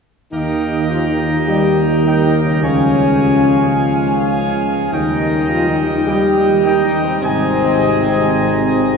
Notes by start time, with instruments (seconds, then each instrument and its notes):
0.32 tuba D#2, trombone section D#3, pipe organ D#3 A#3 G4 A#4, french horn section D#4, trumpet section D#5 G5
0.90 trombone section F3, french horn section F4
1.09 trombone section D#3, french horn section D#4
1.29 trombone section D#3, french horn section D#4
1.48 trombone section G3, french horn section G4, trumpet section D#5 G5
2.05 trombone section D#3, french horn section D#4, trumpet section D#5 G5
2.25 trombone section D#3, french horn section D#4
2.43 trombone section C#3, french horn section C#4
2.62 tuba C#2, trombone section C#3, pipe organ F3 G#3 G#4 C#5, french horn section C#4, trumpet section F5 G#5
4.92 tuba D#2, trombone section D#3, pipe organ D#3 G3 D#4 A#4, french horn section D#4, trumpet section D#5 G5
5.50 trombone section F3, french horn section F4
5.68 trombone section D#3, french horn section D#4
5.87 trombone section D#3, french horn section D#4
6.06 trombone section G3, french horn section G4, trumpet section D#5 G5
6.64 trombone section D#3, french horn section D#4, trumpet section D#5 G5
6.84 trombone section D#3, french horn section D#4
7.02 trombone section C3, french horn section C4
7.21 tuba G#1, trombone section C3, pipe organ G#3 G#4, french horn section C4, trumpet section D#5 G#5